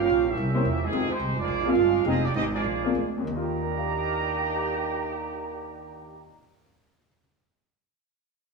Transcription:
Already playing: F3 A#3 C#4 G4
0.00 A#3 C#4 F4 G4 A#4 F5
0.10 A#1
0.27 G3 A#3 C#4 E4 G4 A#4 E5
0.36 C2 C3 C#3 E4
0.54 A#3 C#4 E4 G4 C5
0.64 E2 A#2 E3 G3 A#3 C#4 G4
0.83 C3 D#3 G3 G#3 C4 G#4
0.92 F2 G#3 C4 D#4 F4 G4
1.07 D#3 G#3 C4 D#4 G4 C5, muted upright bass stroke
1.20 C2
1.29 G#1
1.34 F1 F3 G#3 D4
1.40 A#3 F4 G#4 D5
1.48 A#1
1.63 G#3 A#3 C4 D4 F4 G#4
1.68 D4 G#4 A#4 F5
1.75 G1
2.04 F1 G#3 C4 D#4 F4 G4 G#4 D#5
2.25 A#3 D4 D#4 G4 D5
2.34 G#1 G#3 C4 D#4 G4 G#4 D#5
2.53 F3 G#3 A#3 D4 F4 G#4 D5
2.64 A#1
2.84 A#3 C4 D4 F4 G#4
2.95 D2
3.18 D#2
3.24 D#2 D#3
3.28 D#3 A#3 D4 G4 D5 D#5 A#5
3.36 F4
3.42 G4
3.62 A#4
3.69 D5
3.78 F5
3.87 A#5
3.97 D6
4.07 F6
4.19 A#6

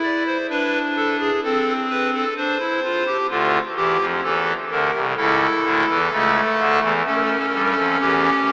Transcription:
Already playing: E4
0.03 D5
0.26 C5
0.49 D4 B4
0.96 A4
1.20 G#4
1.43 C4 A4
1.90 B4
2.14 A4
2.37 D4 C5
2.59 E4
2.84 F4
3.07 G4
3.30 D2 D3 F4
3.76 E2 E3 G4
4.00 F2 F3
4.24 E2 E3 A4
4.70 D2 D3 A#4
4.94 C2 C3
5.17 C#2 C#3 E4 A4
5.64 D2 D3
5.88 E2 E3
6.11 C#2 C#3 A3
6.59 D2 D3
6.82 E2 E3
7.05 A3 C#4 A4
7.14 A#4
7.22 A4
7.31 A#4
7.38 A4
7.47 A#4
7.53 G2 G3 A4
7.63 A#4
7.70 A4
7.76 F2 F3
8.01 E2 E3 G4
8.48 D2 D3

